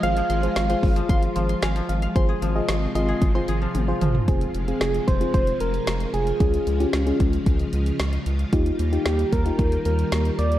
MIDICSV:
0, 0, Header, 1, 7, 480
1, 0, Start_track
1, 0, Key_signature, -4, "minor"
1, 0, Tempo, 530973
1, 29, Time_signature, 4, 2, 24, 8
1, 9572, End_track
2, 0, Start_track
2, 0, Title_t, "Koto"
2, 0, Program_c, 0, 107
2, 0, Note_on_c, 0, 53, 75
2, 0, Note_on_c, 0, 84, 91
2, 28, Note_on_c, 0, 77, 100
2, 137, Note_off_c, 0, 53, 0
2, 148, Note_on_c, 0, 53, 72
2, 264, Note_off_c, 0, 84, 0
2, 268, Note_on_c, 0, 84, 85
2, 625, Note_off_c, 0, 84, 0
2, 629, Note_on_c, 0, 84, 79
2, 858, Note_off_c, 0, 53, 0
2, 869, Note_on_c, 0, 53, 70
2, 985, Note_off_c, 0, 84, 0
2, 989, Note_on_c, 0, 84, 99
2, 1218, Note_off_c, 0, 53, 0
2, 1229, Note_on_c, 0, 53, 75
2, 1332, Note_off_c, 0, 77, 0
2, 1346, Note_off_c, 0, 84, 0
2, 1349, Note_on_c, 0, 84, 79
2, 1469, Note_on_c, 0, 77, 86
2, 1578, Note_off_c, 0, 53, 0
2, 1589, Note_on_c, 0, 53, 70
2, 1826, Note_off_c, 0, 77, 0
2, 1829, Note_on_c, 0, 77, 78
2, 1945, Note_off_c, 0, 84, 0
2, 1949, Note_on_c, 0, 84, 99
2, 1994, Note_off_c, 0, 53, 0
2, 2068, Note_on_c, 0, 68, 75
2, 2189, Note_on_c, 0, 53, 76
2, 2665, Note_off_c, 0, 84, 0
2, 2669, Note_on_c, 0, 84, 84
2, 2785, Note_off_c, 0, 68, 0
2, 2789, Note_on_c, 0, 68, 74
2, 3025, Note_off_c, 0, 84, 0
2, 3029, Note_on_c, 0, 84, 75
2, 3133, Note_off_c, 0, 77, 0
2, 3146, Note_off_c, 0, 68, 0
2, 3149, Note_on_c, 0, 68, 76
2, 3258, Note_off_c, 0, 53, 0
2, 3269, Note_on_c, 0, 53, 68
2, 3617, Note_off_c, 0, 53, 0
2, 3628, Note_on_c, 0, 53, 69
2, 3914, Note_off_c, 0, 53, 0
2, 4052, Note_off_c, 0, 84, 0
2, 4930, Note_off_c, 0, 68, 0
2, 9572, End_track
3, 0, Start_track
3, 0, Title_t, "Soft synth lead"
3, 0, Program_c, 1, 80
3, 28, Note_on_c, 1, 77, 112
3, 1708, Note_off_c, 1, 77, 0
3, 4350, Note_on_c, 1, 68, 96
3, 4588, Note_on_c, 1, 72, 107
3, 4602, Note_off_c, 1, 68, 0
3, 4822, Note_off_c, 1, 72, 0
3, 4827, Note_on_c, 1, 72, 107
3, 5051, Note_off_c, 1, 72, 0
3, 5068, Note_on_c, 1, 70, 99
3, 5547, Note_on_c, 1, 68, 85
3, 5561, Note_off_c, 1, 70, 0
3, 6508, Note_off_c, 1, 68, 0
3, 8190, Note_on_c, 1, 67, 86
3, 8429, Note_on_c, 1, 70, 93
3, 8443, Note_off_c, 1, 67, 0
3, 8904, Note_off_c, 1, 70, 0
3, 8910, Note_on_c, 1, 70, 93
3, 9390, Note_on_c, 1, 74, 96
3, 9403, Note_off_c, 1, 70, 0
3, 9572, Note_off_c, 1, 74, 0
3, 9572, End_track
4, 0, Start_track
4, 0, Title_t, "FM electric piano"
4, 0, Program_c, 2, 5
4, 28, Note_on_c, 2, 65, 78
4, 29, Note_on_c, 2, 68, 69
4, 29, Note_on_c, 2, 72, 83
4, 344, Note_off_c, 2, 65, 0
4, 345, Note_off_c, 2, 68, 0
4, 345, Note_off_c, 2, 72, 0
4, 388, Note_on_c, 2, 65, 74
4, 388, Note_on_c, 2, 68, 68
4, 388, Note_on_c, 2, 72, 78
4, 599, Note_off_c, 2, 65, 0
4, 599, Note_off_c, 2, 68, 0
4, 599, Note_off_c, 2, 72, 0
4, 628, Note_on_c, 2, 65, 86
4, 628, Note_on_c, 2, 68, 80
4, 628, Note_on_c, 2, 72, 92
4, 1228, Note_on_c, 2, 84, 73
4, 1452, Note_off_c, 2, 84, 0
4, 1469, Note_on_c, 2, 80, 74
4, 1470, Note_off_c, 2, 65, 0
4, 1470, Note_off_c, 2, 68, 0
4, 1471, Note_off_c, 2, 72, 0
4, 1692, Note_off_c, 2, 80, 0
4, 1709, Note_on_c, 2, 77, 71
4, 1932, Note_off_c, 2, 77, 0
4, 1949, Note_on_c, 2, 72, 96
4, 1950, Note_on_c, 2, 65, 83
4, 1950, Note_on_c, 2, 68, 79
4, 2265, Note_off_c, 2, 65, 0
4, 2265, Note_off_c, 2, 68, 0
4, 2265, Note_off_c, 2, 72, 0
4, 2310, Note_on_c, 2, 65, 84
4, 2310, Note_on_c, 2, 68, 77
4, 2310, Note_on_c, 2, 75, 95
4, 2625, Note_off_c, 2, 65, 0
4, 2625, Note_off_c, 2, 68, 0
4, 2625, Note_off_c, 2, 75, 0
4, 2669, Note_on_c, 2, 65, 87
4, 2669, Note_on_c, 2, 68, 76
4, 2670, Note_on_c, 2, 75, 98
4, 2985, Note_off_c, 2, 65, 0
4, 2985, Note_off_c, 2, 68, 0
4, 2985, Note_off_c, 2, 75, 0
4, 3029, Note_on_c, 2, 65, 90
4, 3029, Note_on_c, 2, 68, 79
4, 3029, Note_on_c, 2, 72, 100
4, 3450, Note_off_c, 2, 65, 0
4, 3450, Note_off_c, 2, 68, 0
4, 3450, Note_off_c, 2, 72, 0
4, 3509, Note_on_c, 2, 65, 87
4, 3509, Note_on_c, 2, 72, 94
4, 3510, Note_on_c, 2, 68, 79
4, 3825, Note_off_c, 2, 65, 0
4, 3825, Note_off_c, 2, 68, 0
4, 3825, Note_off_c, 2, 72, 0
4, 3870, Note_on_c, 2, 60, 84
4, 3870, Note_on_c, 2, 65, 81
4, 3870, Note_on_c, 2, 68, 92
4, 4185, Note_off_c, 2, 60, 0
4, 4185, Note_off_c, 2, 65, 0
4, 4185, Note_off_c, 2, 68, 0
4, 4230, Note_on_c, 2, 60, 68
4, 4230, Note_on_c, 2, 65, 62
4, 4230, Note_on_c, 2, 68, 77
4, 4650, Note_off_c, 2, 60, 0
4, 4650, Note_off_c, 2, 65, 0
4, 4650, Note_off_c, 2, 68, 0
4, 4710, Note_on_c, 2, 60, 72
4, 4710, Note_on_c, 2, 65, 65
4, 4710, Note_on_c, 2, 68, 79
4, 5551, Note_off_c, 2, 60, 0
4, 5551, Note_off_c, 2, 65, 0
4, 5551, Note_off_c, 2, 68, 0
4, 5789, Note_on_c, 2, 61, 71
4, 5789, Note_on_c, 2, 65, 64
4, 5789, Note_on_c, 2, 68, 81
4, 6104, Note_off_c, 2, 68, 0
4, 6105, Note_off_c, 2, 61, 0
4, 6105, Note_off_c, 2, 65, 0
4, 6148, Note_on_c, 2, 61, 82
4, 6148, Note_on_c, 2, 65, 80
4, 6148, Note_on_c, 2, 67, 91
4, 6359, Note_off_c, 2, 61, 0
4, 6359, Note_off_c, 2, 65, 0
4, 6359, Note_off_c, 2, 67, 0
4, 6388, Note_on_c, 2, 61, 81
4, 6388, Note_on_c, 2, 65, 75
4, 6388, Note_on_c, 2, 68, 86
4, 7230, Note_off_c, 2, 61, 0
4, 7230, Note_off_c, 2, 65, 0
4, 7230, Note_off_c, 2, 68, 0
4, 7708, Note_on_c, 2, 63, 88
4, 7708, Note_on_c, 2, 65, 82
4, 7708, Note_on_c, 2, 67, 92
4, 8024, Note_off_c, 2, 63, 0
4, 8024, Note_off_c, 2, 65, 0
4, 8024, Note_off_c, 2, 67, 0
4, 8068, Note_on_c, 2, 65, 65
4, 8068, Note_on_c, 2, 67, 81
4, 8069, Note_on_c, 2, 63, 69
4, 8489, Note_off_c, 2, 65, 0
4, 8490, Note_off_c, 2, 63, 0
4, 8490, Note_off_c, 2, 67, 0
4, 8549, Note_on_c, 2, 63, 74
4, 8549, Note_on_c, 2, 65, 67
4, 8549, Note_on_c, 2, 67, 80
4, 9391, Note_off_c, 2, 63, 0
4, 9391, Note_off_c, 2, 65, 0
4, 9391, Note_off_c, 2, 67, 0
4, 9572, End_track
5, 0, Start_track
5, 0, Title_t, "String machine"
5, 0, Program_c, 3, 50
5, 0, Note_on_c, 3, 53, 71
5, 0, Note_on_c, 3, 56, 72
5, 0, Note_on_c, 3, 65, 86
5, 1913, Note_off_c, 3, 53, 0
5, 1913, Note_off_c, 3, 65, 0
5, 1914, Note_off_c, 3, 56, 0
5, 1948, Note_on_c, 3, 53, 73
5, 1949, Note_on_c, 3, 48, 77
5, 1949, Note_on_c, 3, 56, 72
5, 1949, Note_on_c, 3, 65, 87
5, 3849, Note_off_c, 3, 53, 0
5, 3849, Note_off_c, 3, 56, 0
5, 3850, Note_off_c, 3, 48, 0
5, 3850, Note_off_c, 3, 65, 0
5, 3869, Note_on_c, 3, 48, 77
5, 3869, Note_on_c, 3, 53, 71
5, 3869, Note_on_c, 3, 56, 70
5, 3869, Note_on_c, 3, 65, 84
5, 5770, Note_off_c, 3, 48, 0
5, 5789, Note_on_c, 3, 49, 76
5, 7673, Note_off_c, 3, 53, 0
5, 7673, Note_off_c, 3, 56, 0
5, 7690, Note_off_c, 3, 49, 0
5, 7708, Note_on_c, 3, 51, 78
5, 7708, Note_on_c, 3, 58, 70
5, 7709, Note_on_c, 3, 55, 69
5, 9572, Note_off_c, 3, 51, 0
5, 9572, Note_off_c, 3, 55, 0
5, 9572, Note_off_c, 3, 58, 0
5, 9572, Note_off_c, 3, 65, 0
5, 9572, End_track
6, 0, Start_track
6, 0, Title_t, "Analog synth bass"
6, 0, Program_c, 4, 38
6, 28, Note_on_c, 4, 32, 114
6, 196, Note_off_c, 4, 32, 0
6, 269, Note_on_c, 4, 32, 98
6, 437, Note_off_c, 4, 32, 0
6, 509, Note_on_c, 4, 32, 104
6, 677, Note_off_c, 4, 32, 0
6, 751, Note_on_c, 4, 32, 108
6, 918, Note_off_c, 4, 32, 0
6, 988, Note_on_c, 4, 32, 106
6, 1156, Note_off_c, 4, 32, 0
6, 1229, Note_on_c, 4, 32, 94
6, 1397, Note_off_c, 4, 32, 0
6, 1470, Note_on_c, 4, 32, 108
6, 1637, Note_off_c, 4, 32, 0
6, 1709, Note_on_c, 4, 32, 95
6, 1877, Note_off_c, 4, 32, 0
6, 1949, Note_on_c, 4, 32, 105
6, 2117, Note_off_c, 4, 32, 0
6, 2188, Note_on_c, 4, 32, 102
6, 2356, Note_off_c, 4, 32, 0
6, 2428, Note_on_c, 4, 32, 98
6, 2596, Note_off_c, 4, 32, 0
6, 2668, Note_on_c, 4, 32, 102
6, 2836, Note_off_c, 4, 32, 0
6, 2908, Note_on_c, 4, 32, 102
6, 3076, Note_off_c, 4, 32, 0
6, 3148, Note_on_c, 4, 32, 92
6, 3316, Note_off_c, 4, 32, 0
6, 3388, Note_on_c, 4, 32, 98
6, 3556, Note_off_c, 4, 32, 0
6, 3629, Note_on_c, 4, 32, 107
6, 3797, Note_off_c, 4, 32, 0
6, 3869, Note_on_c, 4, 29, 101
6, 4037, Note_off_c, 4, 29, 0
6, 4109, Note_on_c, 4, 29, 101
6, 4277, Note_off_c, 4, 29, 0
6, 4348, Note_on_c, 4, 29, 103
6, 4516, Note_off_c, 4, 29, 0
6, 4591, Note_on_c, 4, 29, 109
6, 4758, Note_off_c, 4, 29, 0
6, 4828, Note_on_c, 4, 29, 100
6, 4996, Note_off_c, 4, 29, 0
6, 5069, Note_on_c, 4, 29, 96
6, 5237, Note_off_c, 4, 29, 0
6, 5308, Note_on_c, 4, 29, 101
6, 5476, Note_off_c, 4, 29, 0
6, 5548, Note_on_c, 4, 29, 98
6, 5716, Note_off_c, 4, 29, 0
6, 5789, Note_on_c, 4, 37, 107
6, 5957, Note_off_c, 4, 37, 0
6, 6028, Note_on_c, 4, 37, 99
6, 6196, Note_off_c, 4, 37, 0
6, 6268, Note_on_c, 4, 37, 97
6, 6436, Note_off_c, 4, 37, 0
6, 6510, Note_on_c, 4, 37, 100
6, 6678, Note_off_c, 4, 37, 0
6, 6747, Note_on_c, 4, 37, 102
6, 6916, Note_off_c, 4, 37, 0
6, 6988, Note_on_c, 4, 37, 98
6, 7156, Note_off_c, 4, 37, 0
6, 7229, Note_on_c, 4, 37, 96
6, 7397, Note_off_c, 4, 37, 0
6, 7469, Note_on_c, 4, 37, 100
6, 7637, Note_off_c, 4, 37, 0
6, 7709, Note_on_c, 4, 39, 97
6, 7877, Note_off_c, 4, 39, 0
6, 7949, Note_on_c, 4, 39, 90
6, 8117, Note_off_c, 4, 39, 0
6, 8189, Note_on_c, 4, 39, 98
6, 8357, Note_off_c, 4, 39, 0
6, 8431, Note_on_c, 4, 39, 97
6, 8598, Note_off_c, 4, 39, 0
6, 8668, Note_on_c, 4, 39, 98
6, 8836, Note_off_c, 4, 39, 0
6, 8910, Note_on_c, 4, 39, 100
6, 9077, Note_off_c, 4, 39, 0
6, 9149, Note_on_c, 4, 39, 98
6, 9317, Note_off_c, 4, 39, 0
6, 9389, Note_on_c, 4, 39, 100
6, 9557, Note_off_c, 4, 39, 0
6, 9572, End_track
7, 0, Start_track
7, 0, Title_t, "Drums"
7, 30, Note_on_c, 9, 42, 78
7, 121, Note_off_c, 9, 42, 0
7, 150, Note_on_c, 9, 42, 58
7, 241, Note_off_c, 9, 42, 0
7, 270, Note_on_c, 9, 42, 79
7, 360, Note_off_c, 9, 42, 0
7, 392, Note_on_c, 9, 42, 52
7, 482, Note_off_c, 9, 42, 0
7, 508, Note_on_c, 9, 38, 103
7, 510, Note_on_c, 9, 42, 70
7, 598, Note_off_c, 9, 38, 0
7, 600, Note_off_c, 9, 42, 0
7, 630, Note_on_c, 9, 42, 52
7, 720, Note_off_c, 9, 42, 0
7, 751, Note_on_c, 9, 36, 96
7, 751, Note_on_c, 9, 46, 54
7, 841, Note_off_c, 9, 36, 0
7, 842, Note_off_c, 9, 46, 0
7, 870, Note_on_c, 9, 42, 56
7, 961, Note_off_c, 9, 42, 0
7, 988, Note_on_c, 9, 36, 103
7, 989, Note_on_c, 9, 42, 69
7, 1079, Note_off_c, 9, 36, 0
7, 1079, Note_off_c, 9, 42, 0
7, 1108, Note_on_c, 9, 42, 48
7, 1199, Note_off_c, 9, 42, 0
7, 1227, Note_on_c, 9, 42, 78
7, 1318, Note_off_c, 9, 42, 0
7, 1349, Note_on_c, 9, 42, 51
7, 1440, Note_off_c, 9, 42, 0
7, 1468, Note_on_c, 9, 42, 81
7, 1470, Note_on_c, 9, 38, 110
7, 1558, Note_off_c, 9, 42, 0
7, 1560, Note_off_c, 9, 38, 0
7, 1589, Note_on_c, 9, 42, 52
7, 1680, Note_off_c, 9, 42, 0
7, 1711, Note_on_c, 9, 42, 69
7, 1801, Note_off_c, 9, 42, 0
7, 1828, Note_on_c, 9, 42, 51
7, 1919, Note_off_c, 9, 42, 0
7, 1950, Note_on_c, 9, 36, 117
7, 1950, Note_on_c, 9, 42, 72
7, 2040, Note_off_c, 9, 36, 0
7, 2040, Note_off_c, 9, 42, 0
7, 2190, Note_on_c, 9, 42, 77
7, 2281, Note_off_c, 9, 42, 0
7, 2428, Note_on_c, 9, 38, 101
7, 2429, Note_on_c, 9, 42, 68
7, 2518, Note_off_c, 9, 38, 0
7, 2520, Note_off_c, 9, 42, 0
7, 2671, Note_on_c, 9, 42, 75
7, 2761, Note_off_c, 9, 42, 0
7, 2907, Note_on_c, 9, 42, 64
7, 2908, Note_on_c, 9, 36, 94
7, 2998, Note_off_c, 9, 36, 0
7, 2998, Note_off_c, 9, 42, 0
7, 3147, Note_on_c, 9, 42, 73
7, 3237, Note_off_c, 9, 42, 0
7, 3387, Note_on_c, 9, 42, 75
7, 3388, Note_on_c, 9, 48, 54
7, 3478, Note_off_c, 9, 42, 0
7, 3478, Note_off_c, 9, 48, 0
7, 3628, Note_on_c, 9, 45, 86
7, 3629, Note_on_c, 9, 42, 67
7, 3718, Note_off_c, 9, 45, 0
7, 3719, Note_off_c, 9, 42, 0
7, 3749, Note_on_c, 9, 43, 85
7, 3839, Note_off_c, 9, 43, 0
7, 3869, Note_on_c, 9, 36, 116
7, 3869, Note_on_c, 9, 42, 76
7, 3959, Note_off_c, 9, 36, 0
7, 3959, Note_off_c, 9, 42, 0
7, 3989, Note_on_c, 9, 42, 55
7, 4080, Note_off_c, 9, 42, 0
7, 4109, Note_on_c, 9, 42, 79
7, 4199, Note_off_c, 9, 42, 0
7, 4231, Note_on_c, 9, 42, 48
7, 4321, Note_off_c, 9, 42, 0
7, 4348, Note_on_c, 9, 38, 105
7, 4349, Note_on_c, 9, 42, 66
7, 4438, Note_off_c, 9, 38, 0
7, 4440, Note_off_c, 9, 42, 0
7, 4470, Note_on_c, 9, 42, 51
7, 4560, Note_off_c, 9, 42, 0
7, 4590, Note_on_c, 9, 36, 92
7, 4590, Note_on_c, 9, 42, 75
7, 4681, Note_off_c, 9, 36, 0
7, 4681, Note_off_c, 9, 42, 0
7, 4709, Note_on_c, 9, 42, 56
7, 4799, Note_off_c, 9, 42, 0
7, 4828, Note_on_c, 9, 36, 95
7, 4828, Note_on_c, 9, 42, 63
7, 4918, Note_off_c, 9, 36, 0
7, 4919, Note_off_c, 9, 42, 0
7, 4947, Note_on_c, 9, 42, 46
7, 5037, Note_off_c, 9, 42, 0
7, 5066, Note_on_c, 9, 42, 74
7, 5157, Note_off_c, 9, 42, 0
7, 5188, Note_on_c, 9, 42, 48
7, 5279, Note_off_c, 9, 42, 0
7, 5308, Note_on_c, 9, 42, 79
7, 5310, Note_on_c, 9, 38, 110
7, 5398, Note_off_c, 9, 42, 0
7, 5400, Note_off_c, 9, 38, 0
7, 5428, Note_on_c, 9, 42, 49
7, 5518, Note_off_c, 9, 42, 0
7, 5549, Note_on_c, 9, 42, 65
7, 5640, Note_off_c, 9, 42, 0
7, 5667, Note_on_c, 9, 42, 48
7, 5758, Note_off_c, 9, 42, 0
7, 5788, Note_on_c, 9, 42, 74
7, 5789, Note_on_c, 9, 36, 112
7, 5879, Note_off_c, 9, 36, 0
7, 5879, Note_off_c, 9, 42, 0
7, 5910, Note_on_c, 9, 42, 54
7, 6000, Note_off_c, 9, 42, 0
7, 6029, Note_on_c, 9, 42, 75
7, 6119, Note_off_c, 9, 42, 0
7, 6151, Note_on_c, 9, 42, 50
7, 6241, Note_off_c, 9, 42, 0
7, 6267, Note_on_c, 9, 38, 103
7, 6269, Note_on_c, 9, 42, 67
7, 6357, Note_off_c, 9, 38, 0
7, 6359, Note_off_c, 9, 42, 0
7, 6389, Note_on_c, 9, 42, 51
7, 6479, Note_off_c, 9, 42, 0
7, 6509, Note_on_c, 9, 42, 72
7, 6510, Note_on_c, 9, 36, 90
7, 6600, Note_off_c, 9, 36, 0
7, 6600, Note_off_c, 9, 42, 0
7, 6628, Note_on_c, 9, 42, 52
7, 6718, Note_off_c, 9, 42, 0
7, 6747, Note_on_c, 9, 36, 96
7, 6747, Note_on_c, 9, 42, 62
7, 6837, Note_off_c, 9, 42, 0
7, 6838, Note_off_c, 9, 36, 0
7, 6866, Note_on_c, 9, 42, 45
7, 6956, Note_off_c, 9, 42, 0
7, 6986, Note_on_c, 9, 42, 72
7, 7077, Note_off_c, 9, 42, 0
7, 7108, Note_on_c, 9, 42, 49
7, 7198, Note_off_c, 9, 42, 0
7, 7227, Note_on_c, 9, 42, 77
7, 7229, Note_on_c, 9, 38, 111
7, 7317, Note_off_c, 9, 42, 0
7, 7319, Note_off_c, 9, 38, 0
7, 7347, Note_on_c, 9, 42, 50
7, 7437, Note_off_c, 9, 42, 0
7, 7469, Note_on_c, 9, 42, 69
7, 7559, Note_off_c, 9, 42, 0
7, 7587, Note_on_c, 9, 42, 46
7, 7677, Note_off_c, 9, 42, 0
7, 7708, Note_on_c, 9, 42, 72
7, 7709, Note_on_c, 9, 36, 117
7, 7798, Note_off_c, 9, 42, 0
7, 7799, Note_off_c, 9, 36, 0
7, 7830, Note_on_c, 9, 42, 56
7, 7920, Note_off_c, 9, 42, 0
7, 7949, Note_on_c, 9, 42, 75
7, 8039, Note_off_c, 9, 42, 0
7, 8071, Note_on_c, 9, 42, 49
7, 8161, Note_off_c, 9, 42, 0
7, 8186, Note_on_c, 9, 38, 101
7, 8188, Note_on_c, 9, 42, 67
7, 8277, Note_off_c, 9, 38, 0
7, 8279, Note_off_c, 9, 42, 0
7, 8309, Note_on_c, 9, 42, 50
7, 8399, Note_off_c, 9, 42, 0
7, 8430, Note_on_c, 9, 36, 90
7, 8430, Note_on_c, 9, 42, 75
7, 8520, Note_off_c, 9, 42, 0
7, 8521, Note_off_c, 9, 36, 0
7, 8549, Note_on_c, 9, 42, 54
7, 8640, Note_off_c, 9, 42, 0
7, 8668, Note_on_c, 9, 36, 98
7, 8668, Note_on_c, 9, 42, 65
7, 8758, Note_off_c, 9, 36, 0
7, 8758, Note_off_c, 9, 42, 0
7, 8788, Note_on_c, 9, 42, 46
7, 8878, Note_off_c, 9, 42, 0
7, 8908, Note_on_c, 9, 42, 76
7, 8998, Note_off_c, 9, 42, 0
7, 9029, Note_on_c, 9, 42, 48
7, 9119, Note_off_c, 9, 42, 0
7, 9149, Note_on_c, 9, 42, 80
7, 9151, Note_on_c, 9, 38, 110
7, 9239, Note_off_c, 9, 42, 0
7, 9241, Note_off_c, 9, 38, 0
7, 9268, Note_on_c, 9, 42, 50
7, 9359, Note_off_c, 9, 42, 0
7, 9390, Note_on_c, 9, 42, 67
7, 9481, Note_off_c, 9, 42, 0
7, 9507, Note_on_c, 9, 42, 47
7, 9572, Note_off_c, 9, 42, 0
7, 9572, End_track
0, 0, End_of_file